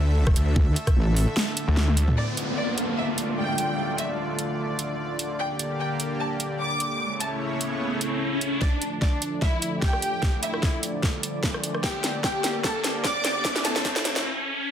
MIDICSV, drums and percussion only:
0, 0, Header, 1, 2, 480
1, 0, Start_track
1, 0, Key_signature, -1, "minor"
1, 0, Tempo, 402685
1, 669, Time_signature, 4, 2, 24, 8
1, 17534, End_track
2, 0, Start_track
2, 0, Title_t, "Drums"
2, 319, Note_on_c, 9, 36, 103
2, 319, Note_on_c, 9, 37, 65
2, 429, Note_on_c, 9, 42, 79
2, 438, Note_off_c, 9, 36, 0
2, 439, Note_off_c, 9, 37, 0
2, 548, Note_off_c, 9, 42, 0
2, 668, Note_on_c, 9, 36, 115
2, 788, Note_off_c, 9, 36, 0
2, 909, Note_on_c, 9, 42, 85
2, 1028, Note_off_c, 9, 42, 0
2, 1039, Note_on_c, 9, 36, 62
2, 1040, Note_on_c, 9, 37, 63
2, 1040, Note_on_c, 9, 42, 38
2, 1158, Note_off_c, 9, 36, 0
2, 1159, Note_off_c, 9, 37, 0
2, 1159, Note_off_c, 9, 42, 0
2, 1389, Note_on_c, 9, 46, 101
2, 1508, Note_off_c, 9, 46, 0
2, 1629, Note_on_c, 9, 38, 118
2, 1748, Note_off_c, 9, 38, 0
2, 1870, Note_on_c, 9, 42, 82
2, 1989, Note_off_c, 9, 42, 0
2, 2109, Note_on_c, 9, 38, 65
2, 2228, Note_off_c, 9, 38, 0
2, 2239, Note_on_c, 9, 48, 63
2, 2349, Note_on_c, 9, 42, 88
2, 2358, Note_off_c, 9, 48, 0
2, 2468, Note_off_c, 9, 42, 0
2, 2479, Note_on_c, 9, 45, 85
2, 2598, Note_off_c, 9, 45, 0
2, 2829, Note_on_c, 9, 42, 79
2, 2948, Note_off_c, 9, 42, 0
2, 3309, Note_on_c, 9, 42, 77
2, 3428, Note_off_c, 9, 42, 0
2, 3788, Note_on_c, 9, 42, 80
2, 3907, Note_off_c, 9, 42, 0
2, 4268, Note_on_c, 9, 42, 80
2, 4387, Note_off_c, 9, 42, 0
2, 4749, Note_on_c, 9, 42, 83
2, 4868, Note_off_c, 9, 42, 0
2, 5228, Note_on_c, 9, 42, 81
2, 5347, Note_off_c, 9, 42, 0
2, 5708, Note_on_c, 9, 42, 80
2, 5827, Note_off_c, 9, 42, 0
2, 6188, Note_on_c, 9, 42, 80
2, 6308, Note_off_c, 9, 42, 0
2, 6668, Note_on_c, 9, 42, 77
2, 6787, Note_off_c, 9, 42, 0
2, 7148, Note_on_c, 9, 42, 76
2, 7268, Note_off_c, 9, 42, 0
2, 7628, Note_on_c, 9, 42, 77
2, 7747, Note_off_c, 9, 42, 0
2, 8108, Note_on_c, 9, 42, 80
2, 8227, Note_off_c, 9, 42, 0
2, 8588, Note_on_c, 9, 42, 74
2, 8707, Note_off_c, 9, 42, 0
2, 9068, Note_on_c, 9, 42, 73
2, 9187, Note_off_c, 9, 42, 0
2, 9548, Note_on_c, 9, 42, 77
2, 9667, Note_off_c, 9, 42, 0
2, 10029, Note_on_c, 9, 42, 81
2, 10148, Note_off_c, 9, 42, 0
2, 10268, Note_on_c, 9, 36, 90
2, 10268, Note_on_c, 9, 38, 48
2, 10387, Note_off_c, 9, 36, 0
2, 10388, Note_off_c, 9, 38, 0
2, 10508, Note_on_c, 9, 42, 82
2, 10628, Note_off_c, 9, 42, 0
2, 10748, Note_on_c, 9, 36, 93
2, 10749, Note_on_c, 9, 38, 51
2, 10867, Note_off_c, 9, 36, 0
2, 10868, Note_off_c, 9, 38, 0
2, 10988, Note_on_c, 9, 42, 84
2, 11108, Note_off_c, 9, 42, 0
2, 11228, Note_on_c, 9, 36, 96
2, 11228, Note_on_c, 9, 38, 50
2, 11347, Note_off_c, 9, 36, 0
2, 11348, Note_off_c, 9, 38, 0
2, 11468, Note_on_c, 9, 42, 84
2, 11588, Note_off_c, 9, 42, 0
2, 11708, Note_on_c, 9, 36, 100
2, 11708, Note_on_c, 9, 38, 58
2, 11827, Note_off_c, 9, 36, 0
2, 11827, Note_off_c, 9, 38, 0
2, 11839, Note_on_c, 9, 37, 59
2, 11948, Note_on_c, 9, 42, 84
2, 11958, Note_off_c, 9, 37, 0
2, 12068, Note_off_c, 9, 42, 0
2, 12188, Note_on_c, 9, 36, 93
2, 12188, Note_on_c, 9, 38, 57
2, 12308, Note_off_c, 9, 36, 0
2, 12308, Note_off_c, 9, 38, 0
2, 12429, Note_on_c, 9, 42, 84
2, 12548, Note_off_c, 9, 42, 0
2, 12559, Note_on_c, 9, 37, 61
2, 12668, Note_on_c, 9, 36, 100
2, 12669, Note_on_c, 9, 38, 65
2, 12679, Note_off_c, 9, 37, 0
2, 12788, Note_off_c, 9, 36, 0
2, 12788, Note_off_c, 9, 38, 0
2, 12909, Note_on_c, 9, 42, 82
2, 13028, Note_off_c, 9, 42, 0
2, 13148, Note_on_c, 9, 36, 96
2, 13150, Note_on_c, 9, 38, 66
2, 13268, Note_off_c, 9, 36, 0
2, 13269, Note_off_c, 9, 38, 0
2, 13389, Note_on_c, 9, 42, 87
2, 13509, Note_off_c, 9, 42, 0
2, 13628, Note_on_c, 9, 36, 99
2, 13629, Note_on_c, 9, 38, 71
2, 13748, Note_off_c, 9, 36, 0
2, 13748, Note_off_c, 9, 38, 0
2, 13760, Note_on_c, 9, 37, 59
2, 13869, Note_on_c, 9, 42, 85
2, 13879, Note_off_c, 9, 37, 0
2, 13988, Note_off_c, 9, 42, 0
2, 14000, Note_on_c, 9, 37, 51
2, 14108, Note_on_c, 9, 36, 96
2, 14109, Note_on_c, 9, 38, 74
2, 14119, Note_off_c, 9, 37, 0
2, 14228, Note_off_c, 9, 36, 0
2, 14229, Note_off_c, 9, 38, 0
2, 14349, Note_on_c, 9, 38, 77
2, 14349, Note_on_c, 9, 42, 83
2, 14468, Note_off_c, 9, 38, 0
2, 14468, Note_off_c, 9, 42, 0
2, 14588, Note_on_c, 9, 36, 102
2, 14589, Note_on_c, 9, 38, 77
2, 14707, Note_off_c, 9, 36, 0
2, 14708, Note_off_c, 9, 38, 0
2, 14828, Note_on_c, 9, 38, 81
2, 14828, Note_on_c, 9, 42, 80
2, 14948, Note_off_c, 9, 38, 0
2, 14948, Note_off_c, 9, 42, 0
2, 15068, Note_on_c, 9, 36, 102
2, 15069, Note_on_c, 9, 38, 84
2, 15187, Note_off_c, 9, 36, 0
2, 15188, Note_off_c, 9, 38, 0
2, 15309, Note_on_c, 9, 38, 87
2, 15309, Note_on_c, 9, 42, 80
2, 15428, Note_off_c, 9, 38, 0
2, 15428, Note_off_c, 9, 42, 0
2, 15548, Note_on_c, 9, 36, 96
2, 15548, Note_on_c, 9, 38, 89
2, 15667, Note_off_c, 9, 36, 0
2, 15667, Note_off_c, 9, 38, 0
2, 15788, Note_on_c, 9, 38, 97
2, 15788, Note_on_c, 9, 42, 82
2, 15907, Note_off_c, 9, 38, 0
2, 15907, Note_off_c, 9, 42, 0
2, 16028, Note_on_c, 9, 36, 94
2, 16028, Note_on_c, 9, 38, 90
2, 16147, Note_off_c, 9, 36, 0
2, 16147, Note_off_c, 9, 38, 0
2, 16159, Note_on_c, 9, 38, 80
2, 16268, Note_off_c, 9, 38, 0
2, 16268, Note_on_c, 9, 38, 98
2, 16268, Note_on_c, 9, 42, 83
2, 16387, Note_off_c, 9, 38, 0
2, 16387, Note_off_c, 9, 42, 0
2, 16399, Note_on_c, 9, 38, 85
2, 16508, Note_off_c, 9, 38, 0
2, 16508, Note_on_c, 9, 36, 100
2, 16508, Note_on_c, 9, 38, 97
2, 16627, Note_off_c, 9, 36, 0
2, 16627, Note_off_c, 9, 38, 0
2, 16639, Note_on_c, 9, 38, 91
2, 16749, Note_off_c, 9, 38, 0
2, 16749, Note_on_c, 9, 38, 99
2, 16749, Note_on_c, 9, 42, 80
2, 16868, Note_off_c, 9, 38, 0
2, 16868, Note_off_c, 9, 42, 0
2, 16879, Note_on_c, 9, 38, 88
2, 16998, Note_off_c, 9, 38, 0
2, 17534, End_track
0, 0, End_of_file